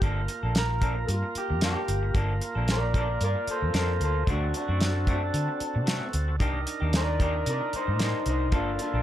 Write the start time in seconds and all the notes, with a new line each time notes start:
0.01 G1 F3 A#3 D4 F4 A4 A#4, kick, closed hi-hat
0.28 muted clean electric guitar stroke, closed hi-hat
0.43 A#1 A#3 D4 A4
0.55 A#4, muted clean electric guitar stroke, snare, closed hi-hat
0.70 muted clean electric guitar stroke
0.81 F3 A#3 D4 A4, kick, closed hi-hat
0.96 muted clean electric guitar stroke
1.08 G2 F4, closed hi-hat
1.23 muted clean electric guitar stroke
1.35 G4, muted fingered electric bass stroke, closed hi-hat
1.50 F2, muted clean electric guitar stroke
1.61 F3 A#3 D4 G4 A4, snare, closed hi-hat
1.88 G1, muted clean electric guitar stroke, closed hi-hat
2.03 muted clean electric guitar stroke
2.14 G1 F3 A#3 D4 A4, kick, closed hi-hat
2.41 muted clean electric guitar stroke, closed hi-hat
2.55 A#1 A#3 D4 A4
2.68 A#4, muted clean electric guitar stroke, snare, closed hi-hat
2.72 D5
2.82 muted clean electric guitar stroke
2.94 F3 A#3 D4 A4 A#4 D5, kick, closed hi-hat
3.09 muted clean electric guitar stroke
3.21 G2 A#4 D5, closed hi-hat
3.36 muted clean electric guitar stroke
3.47 A4 C5, muted fingered electric bass stroke, closed hi-hat
3.62 F2, muted clean electric guitar stroke
3.73 F2 F3 A#3 D4 A4, snare, closed hi-hat
3.78 C5
4.00 D2 A4, muted clean electric guitar stroke, closed hi-hat
4.05 C5
4.14 muted clean electric guitar stroke
4.27 D2 F#3 A3 C4 D4 F#4 A4, kick, closed hi-hat
4.54 D4 F#4, muted clean electric guitar stroke, closed hi-hat
4.68 F#2 A3 C4 F#4
4.80 D4 F#4, muted clean electric guitar stroke, snare, closed hi-hat
4.95 muted clean electric guitar stroke
5.07 F#3 A3 C4 D4 F#4, kick, closed hi-hat
5.22 muted clean electric guitar stroke
5.34 D3, closed hi-hat
5.48 muted clean electric guitar stroke
5.60 muted fingered electric bass stroke, closed hi-hat
5.75 C3, muted clean electric guitar stroke
5.86 F#3 A3 C4 F#4, snare, closed hi-hat
6.13 D2, muted clean electric guitar stroke, closed hi-hat
6.28 muted clean electric guitar stroke
6.39 C2 D#3 A#3 D4 D#4 G4 A#4, kick, closed hi-hat
6.67 muted clean electric guitar stroke, closed hi-hat
6.80 D#2 A#3 D4 G4
6.93 A#4 D5, muted clean electric guitar stroke, snare, closed hi-hat
7.07 muted clean electric guitar stroke
7.20 D#3 A#3 D4 G4 A#4 D5, kick, closed hi-hat
7.35 muted clean electric guitar stroke
7.46 C3 A#4 D5, closed hi-hat
7.61 muted clean electric guitar stroke
7.73 D#4 C5, muted fingered electric bass stroke, closed hi-hat
7.87 A2, muted clean electric guitar stroke
7.99 D#3 A#3 D4 D#4 G4 C5, snare, closed hi-hat
8.26 C2 D#4 C5, muted clean electric guitar stroke, closed hi-hat
8.40 muted clean electric guitar stroke
8.52 G1 F3 A#3 D4 F4 A4, kick, closed hi-hat
8.56 F4
8.79 D4 F4, muted clean electric guitar stroke, closed hi-hat
8.94 A#1 A#3 D4 A4